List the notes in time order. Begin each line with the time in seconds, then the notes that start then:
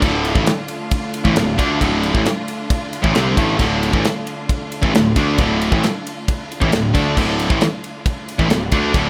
Already playing: D3 A3 D4 F4
0.01 D1 D2 A2 D3, kick, crash
0.25 ride
0.35 A1 A2 E3, kick
0.46 snare, ride
0.68 ride
0.91 kick, ride
1.14 ride
1.24 A1 A2 E3, kick
1.36 D1 D2 A2, snare, ride
1.58 D2 D3 A3 D4, kick, ride
1.80 D1 D2 A2 D3, kick, ride
2.03 ride
2.13 A1 A2 E3, kick
2.26 snare, ride
2.48 ride
2.70 kick, ride
2.93 ride
3.02 A1 A2 E3, kick
3.13 C2 C3 G3 C4, snare, ride
3.36 A1 A2 E3 A3, kick, ride
3.58 D1 D2 A2 D3, kick, crash
3.83 ride
3.92 A1 A2 E3, kick
4.04 snare, ride
4.27 ride
4.49 kick, ride
4.72 ride
4.82 A1 A2 E3, kick
4.94 D1 D2 A2, snare, ride
5.16 D2 D3 A3 D4, kick, ride
5.38 D1 D2 A2 D3, kick, ride
5.61 ride
5.72 A1 A2 E3, kick
5.83 snare, ride
6.07 ride
6.28 kick, ride
6.52 ride
6.61 A1 A2 E3, kick
6.72 D1 D2 A2, snare, ride
6.94 D2 D3 A3 D4, kick, ride
7.17 D1 D2 A2 D3, kick, crash
7.39 ride
7.50 A1 A2 E3, kick
7.61 snare, ride
7.84 ride
8.06 kick, ride
8.28 ride
8.39 A1 A2 E3, kick
8.49 D1 D2 A2, snare, ride
8.72 D2 D3 A3 D4, kick, ride
8.94 D1 D2 A2 D3, kick, ride